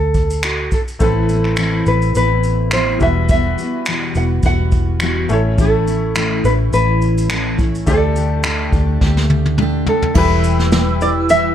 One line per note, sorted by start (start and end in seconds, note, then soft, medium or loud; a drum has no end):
0.00 0.68 D2 medium
0.00 0.45 A4 medium
0.14 kick medium
0.14 shaker soft
0.30 shaker medium
0.43 0.73 F#4 medium
0.43 finger snap loud
0.43 shaker medium
0.72 0.80 A4 medium
0.72 kick medium
0.72 shaker medium
0.88 shaker soft
0.99 1.82 A1 medium
0.99 1.29 A2 medium
0.99 1.29 E3 medium
0.99 2.96 A3 medium
0.99 1.30 B3 medium
0.99 2.97 C4 medium
0.99 1.29 C4 medium
0.99 2.98 E4 medium
0.99 1.28 E4 medium
0.99 1.87 A4 medium
0.99 2.98 B4 medium
0.99 kick medium
0.99 shaker medium
1.29 1.57 B3 soft
1.29 1.57 C4 soft
1.29 1.57 E4 soft
1.29 shaker medium
1.44 finger snap soft
1.57 1.86 A2 medium
1.57 1.86 E3 medium
1.57 1.87 B3 medium
1.57 1.86 C4 medium
1.57 1.85 E4 medium
1.57 finger snap loud
1.57 shaker medium
1.86 2.13 A1 medium
1.86 2.15 B3 soft
1.86 2.15 C4 soft
1.86 2.15 E4 soft
1.86 2.15 B4 medium
1.86 shaker soft
2.02 shaker soft
2.15 2.97 A1 medium
2.15 2.73 E3 soft
2.15 2.73 B3 medium
2.15 2.73 C4 medium
2.15 2.74 E4 medium
2.15 2.73 B4 medium
2.15 shaker medium
2.43 shaker soft
2.71 3.01 A2 medium
2.71 3.01 E3 medium
2.71 3.01 B3 medium
2.71 3.02 C4 medium
2.71 3.01 E4 medium
2.71 3.02 C5 medium
2.71 finger snap loud
2.71 shaker medium
2.99 3.54 E1 medium
2.99 5.25 G3 medium
2.99 3.30 B3 soft
2.99 5.26 E4 medium
2.99 3.30 F#4 medium
2.99 5.26 F#4 medium
2.99 3.28 E5 medium
2.99 kick medium
2.99 shaker medium
3.03 3.29 E3 soft
3.03 3.30 G3 soft
3.03 5.27 B4 medium
3.29 3.58 E2 medium
3.29 3.59 B2 medium
3.29 3.59 E3 medium
3.29 3.59 G3 medium
3.29 3.59 B3 medium
3.29 3.58 F#4 medium
3.29 4.16 E5 medium
3.29 kick medium
3.29 shaker medium
3.58 3.86 E3 soft
3.58 3.87 G3 soft
3.58 3.87 B3 soft
3.58 3.87 F#4 soft
3.58 shaker medium
3.86 4.16 E2 medium
3.86 4.16 B2 medium
3.86 4.16 E3 medium
3.86 4.16 G3 medium
3.86 4.15 B3 medium
3.86 4.14 F#4 medium
3.86 finger snap loud
3.86 shaker medium
4.15 4.42 E1 medium
4.15 4.43 E3 soft
4.15 4.44 G3 soft
4.15 4.44 B3 soft
4.15 4.44 F#4 soft
4.15 4.24 F#5 medium
4.15 shaker soft
4.43 5.26 E1 loud
4.43 5.01 E3 medium
4.43 5.01 G3 medium
4.43 5.01 B3 medium
4.43 5.01 F#4 medium
4.43 4.98 F#5 loud
4.43 kick medium
4.43 shaker medium
4.72 kick medium
4.72 shaker soft
5.00 5.29 E2 medium
5.00 5.30 B2 medium
5.00 5.30 E3 medium
5.00 5.30 G3 medium
5.00 5.30 B3 medium
5.00 5.29 F#4 medium
5.00 5.32 F#4 medium
5.00 finger snap loud
5.00 shaker medium
5.29 6.40 A1 medium
5.29 7.54 A3 medium
5.29 5.57 A3 soft
5.29 7.55 C#4 medium
5.29 5.58 C#4 medium
5.29 5.58 E4 medium
5.29 7.55 E4 medium
5.29 5.40 A4 medium
5.29 7.56 C#5 medium
5.29 shaker medium
5.57 5.87 A2 medium
5.57 5.87 E3 medium
5.57 5.87 A3 medium
5.57 5.87 C#4 medium
5.57 5.85 E4 medium
5.57 6.13 A4 medium
5.57 kick medium
5.57 shaker medium
5.86 6.15 A3 soft
5.86 6.15 C#4 soft
5.86 6.15 E4 medium
5.86 shaker medium
6.15 6.44 A2 medium
6.15 6.44 E3 medium
6.15 6.44 A3 medium
6.15 6.43 C#4 medium
6.15 6.43 E4 medium
6.15 finger snap loud
6.15 shaker medium
6.44 6.71 A1 loud
6.44 6.71 A3 soft
6.44 6.72 C#4 soft
6.44 6.73 E4 soft
6.44 6.53 B4 loud
6.44 shaker soft
6.72 7.83 A1 medium
6.72 7.28 E3 medium
6.72 7.30 A3 medium
6.72 7.30 C#4 medium
6.72 7.30 E4 medium
6.72 7.55 B4 loud
6.72 shaker medium
7.02 shaker soft
7.18 shaker medium
7.29 7.58 A2 medium
7.29 7.58 E3 medium
7.29 7.59 A3 medium
7.29 7.58 C#4 medium
7.29 7.56 E4 medium
7.29 finger snap loud
7.29 shaker medium
7.58 7.86 A3 soft
7.58 7.87 C#4 medium
7.58 7.87 E4 medium
7.58 kick medium
7.58 shaker medium
7.75 shaker soft
7.86 8.69 D2 loud
7.86 8.15 D3 medium
7.86 10.11 A3 medium
7.86 8.16 A3 medium
7.86 10.12 D4 medium
7.86 8.15 D4 medium
7.86 8.14 G4 medium
7.86 10.13 G4 medium
7.86 9.55 A4 medium
7.86 7.96 C5 medium
7.86 kick medium
7.86 shaker medium
7.97 10.17 D5 medium
8.15 8.43 A3 soft
8.15 8.44 D4 medium
8.15 8.44 G4 medium
8.15 shaker medium
8.43 8.73 D3 medium
8.43 8.73 A3 medium
8.43 8.73 D4 medium
8.43 8.72 G4 medium
8.43 finger snap loud
8.43 shaker medium
8.73 8.99 D2 loud
8.73 9.01 A3 medium
8.73 9.01 D4 medium
8.73 9.02 G4 medium
8.73 kick medium
8.73 shaker soft
9.01 9.83 D2 loud
9.01 9.57 D3 medium
9.01 9.57 A3 medium
9.01 9.58 D4 medium
9.01 9.59 G4 medium
9.01 kick medium
9.01 snare medium
9.17 snare soft
9.30 high tom medium
9.46 high tom medium
9.58 9.87 D3 medium
9.58 9.87 A3 medium
9.58 9.86 D4 medium
9.58 9.85 G4 medium
9.58 mid tom medium
9.86 10.15 A3 soft
9.86 10.16 D4 medium
9.86 10.15 G4 medium
9.86 10.17 A4 medium
9.86 floor tom medium
10.02 floor tom medium
10.14 11.55 E1 loud
10.14 10.72 E2 medium
10.14 10.73 B2 medium
10.14 10.72 E3 medium
10.14 10.72 G3 medium
10.14 11.55 E4 medium
10.14 10.73 E4 medium
10.14 10.73 G4 medium
10.14 11.55 G4 medium
10.14 11.55 B4 medium
10.14 11.02 B4 medium
10.14 11.55 B4 medium
10.14 11.55 E5 medium
10.14 11.55 G5 medium
10.14 11.55 E6 medium
10.14 kick loud
10.14 crash medium
10.44 shaker medium
10.59 snare soft
10.72 11.01 E3 medium
10.72 11.01 G3 medium
10.72 11.01 E4 medium
10.72 11.00 G4 medium
10.72 snare loud
10.72 shaker medium
11.01 11.28 E3 soft
11.01 11.29 G3 soft
11.01 11.30 E4 medium
11.01 11.30 G4 medium
11.01 11.10 D5 loud
11.01 shaker soft
11.29 11.55 E3 medium
11.29 11.55 G3 medium
11.29 11.55 E4 medium
11.29 11.55 G4 medium
11.29 11.55 E5 loud
11.29 shaker medium